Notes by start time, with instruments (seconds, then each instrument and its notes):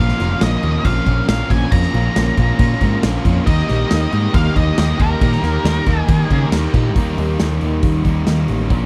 Already playing: distorted electric guitar A#2, tonewheel organ C#4 F4 A#4, lead electric guitar F5
0.00 picked electric bass A#1, distorted electric guitar F3 A#3 C#4 F4 A#4
0.09 snare
0.19 picked electric bass F1, distorted electric guitar A#2 F3 A#3 C#4 F4 A#4, snare, crash
0.41 picked electric bass A#1, distorted electric guitar A#2 F3 A#3 C#4 F4 A#4, lead electric guitar D#5, snare, crash
0.63 picked electric bass D#2, distorted electric guitar A#2 F3 A#3 C#4 F4 A#4, crash
0.84 picked electric bass A#1, distorted electric guitar A#2 F3 A#3 C#4 F4 A#4, lead electric guitar F5, kick, crash
1.06 picked electric bass A#1, distorted electric guitar A#2 F3 A#3 C#4 F4 A#4, kick, crash
1.28 picked electric bass A#1, distorted electric guitar A#2 F3 A#3 C#4 F4 A#4, lead electric guitar F5, snare, crash
1.50 picked electric bass A#1, distorted electric guitar A#2 F3 A#3 C#4 F4 A#4, lead electric guitar G#5, kick, crash
1.71 picked electric bass F2, distorted electric guitar A#2 F3 A#3 C#4 F4 A#4, lead electric guitar A#5, kick, crash
1.83 snare
1.94 picked electric bass A#1, distorted electric guitar A#2 F3 A#3 C#4 F4 A#4, crash
2.15 picked electric bass A#1, distorted electric guitar A#2 F3 A#3 C#4 F4 A#4, snare, crash
2.37 picked electric bass A#1, distorted electric guitar A#2 F3 A#3 C#4 F4 A#4, kick, crash
2.59 distorted electric guitar A#2 F3 A#3 C#4 F4 A#4, picked electric bass A#2, kick, crash
2.81 picked electric bass G#2, distorted electric guitar A#2 F3 A#3 C#4 F4 A#4, kick, crash
3.03 picked electric bass A#1, distorted electric guitar A#2 F3 A#3 C#4 F4 A#4, snare, crash
3.25 picked electric bass F2, distorted electric guitar A#2 F3 A#3 C#4 F4 A#4, kick, crash
3.45 picked electric bass D#2, distorted electric guitar D#3 G3 A#3 G4 A#4, tonewheel organ D#4 G4 A#4, overdriven electric guitar D#4, lead electric guitar D#5, kick, crash
3.68 picked electric bass A#1, distorted electric guitar D#3 G3 A#3 G4 A#4, overdriven electric guitar D#4, snare, crash
3.89 picked electric bass D#2, distorted electric guitar D#3 G3 A#3 G4 A#4, overdriven electric guitar D#4, snare, crash
4.11 picked electric bass G#2, distorted electric guitar D#3 G3 A#3 G4 A#4, overdriven electric guitar D#4, crash
4.32 picked electric bass D#2, distorted electric guitar D#3 G3 A#3 G4 A#4, overdriven electric guitar D#4, lead electric guitar F5, kick, crash
4.55 picked electric bass D#2, distorted electric guitar D#3 G3 A#3 G4 A#4, overdriven electric guitar D#4, lead electric guitar D#5, kick, crash
4.76 picked electric bass D#2, distorted electric guitar D#3 G3 A#3 G4 A#4, overdriven electric guitar D#4, snare, crash
4.98 picked electric bass D#2, distorted electric guitar D#3 G3 A#3 G4 A#4, overdriven electric guitar D#4, lead electric guitar A#4, kick, crash
5.21 picked electric bass A#2, distorted electric guitar D#3 G3 A#3 G4 A#4, overdriven electric guitar D#4, kick, crash
5.32 snare
5.42 picked electric bass D#2, distorted electric guitar D#3 G3 A#3 G4 A#4, overdriven electric guitar D#4, snare, crash
5.65 picked electric bass D#2, distorted electric guitar D#3 G3 A#3 G4 A#4, overdriven electric guitar D#4, snare, crash
5.86 picked electric bass D#2, distorted electric guitar D#3 G3 A#3 G4 A#4, overdriven electric guitar D#4, kick, crash
5.99 lead electric guitar G#4
6.07 distorted electric guitar D#3 G3 A#3 G4 A#4, picked electric bass D#3, overdriven electric guitar D#4, kick, crash
6.30 picked electric bass C#3, distorted electric guitar D#3 G3 A#3 G4 A#4, overdriven electric guitar D#4, kick, crash
6.52 picked electric bass D#2, distorted electric guitar D#3 G3 A#3 G4 A#4, overdriven electric guitar D#4, snare, crash
6.73 picked electric bass A#2, distorted electric guitar D#3 G3 A#3 G4 A#4, overdriven electric guitar D#4, kick, crash
6.94 picked electric bass D#2, distorted electric guitar D#3 G3 A#3 G4 A#4, kick, open hi-hat
6.99 overdriven electric guitar D#4
7.18 picked electric bass D#2, open hi-hat
7.40 picked electric bass D#2, snare, open hi-hat
7.61 picked electric bass D#2, open hi-hat
7.83 picked electric bass D#2, kick, open hi-hat
8.04 picked electric bass D#2, overdriven electric guitar D#3 G3 A#3 D#4, kick, open hi-hat
8.26 picked electric bass D#2, overdriven electric guitar D#3 G3 A#3 D#4, snare, open hi-hat
8.48 picked electric bass A1, open hi-hat
8.68 picked electric bass A#1, distorted electric guitar A#2 F3 A#3 C#4 F4 A#4, kick, open hi-hat